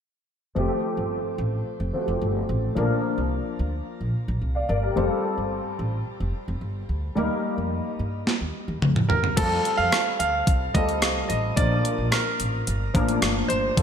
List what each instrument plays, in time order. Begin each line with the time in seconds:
0.55 upright bass F1, grand piano F3 A3 C4 G4
0.97 upright bass G1
1.38 upright bass A1
1.80 upright bass F1
1.93 grand piano F3 A3 C4 F#4
2.01 grand piano G4
2.08 upright bass F1
2.21 upright bass G1
2.49 upright bass A1
2.75 upright bass A#1, grand piano F3 A#3 D4 A#4
3.18 upright bass C2
3.59 upright bass D2
4.01 upright bass A#1
4.28 upright bass A#1
4.41 upright bass C2
4.55 grand piano D5 F5
4.69 upright bass G1, grand piano A#4 D5
4.83 grand piano G4 A#4
4.96 upright bass F1, grand piano G3 C4 F4 A4
5.38 upright bass G1
5.79 upright bass A1
6.20 upright bass F1
6.48 upright bass F1
6.61 upright bass G1
6.89 upright bass D2
7.15 upright bass D#2, grand piano G3 A#3 D#4 A#4
7.58 upright bass F2
7.99 upright bass G2
8.27 snare
8.41 upright bass D#2
8.68 upright bass D#2
8.82 upright bass F2, mid tom
8.96 mid tom
9.09 upright bass D#2, grand piano A#4, floor tom
9.24 floor tom
9.37 upright bass F2, grand piano G3 C4 F4 G4 A4, kick, closed hi-hat, crash
9.44 grand piano A4
9.65 closed hi-hat
9.77 upright bass F2, grand piano F5
9.92 cross-stick, closed hi-hat
10.19 upright bass D2, grand piano F5, closed hi-hat
10.47 upright bass C2, kick, closed hi-hat
10.74 upright bass D2, grand piano G3 C4 F4 A4 D#5, kick, closed hi-hat
10.89 closed hi-hat
11.02 upright bass C2, cross-stick, closed hi-hat
11.29 upright bass A1, grand piano D#5, closed hi-hat
11.56 upright bass A#1, grand piano F3 A#3 D4 A#4 D5, kick, closed hi-hat
11.85 closed hi-hat
11.98 upright bass A#1
12.11 grand piano A#4, cross-stick, closed hi-hat
12.40 upright bass A1, closed hi-hat
12.67 upright bass G1, closed hi-hat
12.94 upright bass A1, grand piano F3 A#3 D4 A#4, kick, closed hi-hat
13.09 closed hi-hat
13.22 upright bass G1, cross-stick, closed hi-hat
13.48 upright bass G1, grand piano C5, closed hi-hat
13.76 upright bass F1, grand piano G3 C4 F4 A4, kick, closed hi-hat